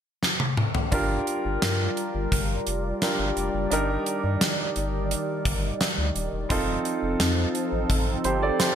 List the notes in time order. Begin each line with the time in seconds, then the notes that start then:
0.23 snare
0.40 high tom
0.57 mid tom
0.75 floor tom
0.92 G1 G3 D4 F4 G4 A#4 D5, kick, closed hi-hat
1.27 closed hi-hat
1.45 G1
1.62 G2, snare, closed hi-hat
1.97 closed hi-hat
2.15 G1
2.32 G1, kick, closed hi-hat
2.67 F1, closed hi-hat
3.02 D4 F4 G4 A#4, snare, closed hi-hat
3.19 G1
3.37 F1, closed hi-hat
3.54 F#1
3.71 G1 D#3 D4 D#4 G4 A#4, closed hi-hat
4.06 closed hi-hat
4.24 G2
4.41 snare, closed hi-hat
4.76 G1, closed hi-hat
5.11 closed hi-hat
5.45 G1, kick, closed hi-hat
5.81 snare, closed hi-hat
5.98 D2
6.16 D#1, closed hi-hat
6.33 E1
6.49 F1 F3 C4 D#4 F4 A4, kick, closed hi-hat
6.85 closed hi-hat
7.03 F1
7.20 F2, snare, closed hi-hat
7.55 closed hi-hat
7.72 A1
7.90 A1, kick, closed hi-hat
8.24 G1 G4 C5, closed hi-hat
8.42 A4 D5
8.60 G4 C5, snare, closed hi-hat